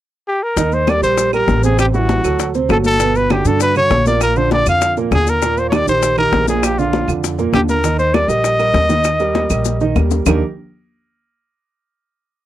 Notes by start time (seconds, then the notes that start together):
0.28 G4
0.43 A#4
0.57 D#2 D#3 D#4 D#5, high bongo, high conga, maracas
0.72 C5, high conga, maracas
0.87 G3 G4 A#4 D5, high bongo, high conga, claves, maracas
1.02 A#1 G3 G4 A#4 C5, high bongo, high conga, maracas
1.18 high bongo, high conga, maracas
1.33 G3 G4 A#4, high bongo, high conga, claves, maracas
1.48 A1, high bongo, low bongo, high conga, maracas
1.63 C3 C4 G#4 C5, high bongo, maracas
1.79 G4, high bongo, high conga, claves, maracas
1.94 E3 G3 E4 F#4, high conga, maracas
2.09 high bongo, high conga, maracas
2.24 D2 F#3 F#4 A4, high bongo, high conga, claves, maracas
2.39 high bongo, high conga, maracas
2.54 C3 C4 C5, high bongo, high conga, maracas
2.69 G1 F#3 F#4 A4, high bongo, low bongo, high conga, claves, maracas
2.84 A4, high bongo, high conga, maracas
3.00 B2 B3 B4, high bongo, maracas
3.15 B4, high conga, maracas
3.30 D3 D4 F#4 G4, high bongo, high conga, claves, maracas
3.45 G2 D3 D4 F#4 A4, high bongo, high conga, maracas
3.60 B4, high bongo, high conga, maracas
3.75 D3 D4 F#4 C#5, high bongo, high conga, claves, maracas
3.90 A#1, high bongo, low bongo, high conga, maracas
4.06 A#2 A#3 A#4 D5, high bongo, high conga, maracas
4.21 A#4, high bongo, high conga, claves, maracas
4.36 D3 D4 F4 C5, high conga, maracas
4.51 D5, high bongo, high conga, maracas
4.66 F2 D3 D4 F4 F5, high bongo, high conga, claves, maracas
4.82 high bongo, high conga, maracas
4.97 A#2 A#3 A#4, high bongo, high conga, maracas
5.11 D#2 D3 D4 F4 G#4, high bongo, low bongo, high conga, claves, maracas
5.27 A#4, high bongo, maracas
5.42 A#2 A#3 A#4, high bongo, high conga, maracas
5.57 C5, high conga, maracas
5.69 D#3 D#4 G4 C#5, high bongo, high conga, claves, maracas
5.74 D5
5.87 A#1 D#3 D#4 G4 C5, high bongo, high conga, maracas
6.02 high bongo, high conga, maracas
6.17 D#3 D#4 G4 A#4, high bongo, high conga, claves, maracas
6.32 A#1, high bongo, low bongo, high conga, maracas
6.47 A#2 A#3 G#4 A#4, high bongo, high conga, maracas
6.63 G4, high bongo, high conga, claves, maracas
6.78 D3 D4 F4, high conga, maracas
6.93 high bongo, high conga, maracas
7.08 F2 D3 D4 F4, high bongo, high conga, claves, maracas
7.24 high bongo, high conga, maracas
7.38 A#2 A#3 A#4, high bongo, high conga, maracas
7.53 D#2 D3 D4 F4 G4, high bongo, low bongo, high conga, claves, maracas
7.69 A#4, high bongo, high conga, maracas
7.84 D#3 D#4 D#5, high bongo, high conga, maracas
7.99 C5, high conga, maracas
8.14 G3 G4 A#4 D5, high bongo, high conga, claves, maracas
8.28 A#1 G3 G4 A#4 D#5, high bongo, high conga, maracas
8.44 high bongo, high conga, maracas
8.59 G3 G4 A#4, high bongo, high conga, claves, maracas
8.74 D#2, high bongo, low bongo, high conga, maracas
8.89 D#3 D#4 D#5, high bongo, high conga, maracas
9.04 high bongo, high conga, claves, maracas
9.20 G3 G4 A#4, high conga, maracas
9.35 high bongo, high conga, maracas
9.50 A#1 G3 G4 A#4, high bongo, high conga, claves, maracas
9.65 high bongo, high conga, maracas
9.80 D#3 D#4 D#5, high conga, maracas
9.96 D#2 G3 G4 A#4, low bongo, high conga, claves, maracas
10.11 low bongo, maracas
10.26 D#2 D#3 A#3 D4 D#4 G4 A#4, low bongo, low conga, claves, maracas